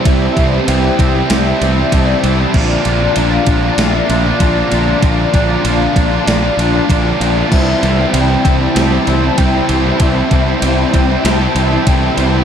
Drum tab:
CC |--------|x-------|--------|x-------|
RD |xxxxxxxx|-xxxxxxx|xxxxxxxx|-xxxxxxx|
SD |----oo--|----oo--|----o---|----oo--|
BD |oo-o--o-|o--o--o-|oo-o--o-|o--o--o-|

CC |--------|
RD |xxxxxxxx|
SD |----o---|
BD |oo-o--o-|